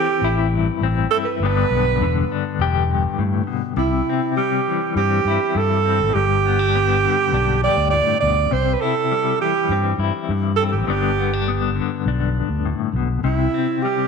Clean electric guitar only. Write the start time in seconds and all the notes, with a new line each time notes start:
Already playing: E3 C4
0.24 E4
0.54 G2
0.83 C4
1.13 E4
1.43 G2 D3 B3 D4, muted clean electric guitar stroke
2.02 D3
2.32 D4
2.61 G4
2.90 G2
3.19 A2
3.47 B2
3.77 C3
4.09 C4
4.37 G3
4.68 E3
4.98 C4
5.28 E4
5.55 G2
5.85 C4
6.16 G2
6.46 B3
6.59 D4
6.75 B3
7.05 D3
7.34 D4
7.64 G4
7.93 A2
8.23 B2
8.51 C3
8.82 E4
9.12 G3
9.40 E3
9.72 C4
10.00 E4
10.30 G2
10.59 C4
10.87 G2 D3 B3 D4
11.18 B3
11.33 D4
11.48 B3
11.76 D3
12.08 D4
12.65 A2
12.96 B2
13.24 C3
13.54 C4
13.85 G3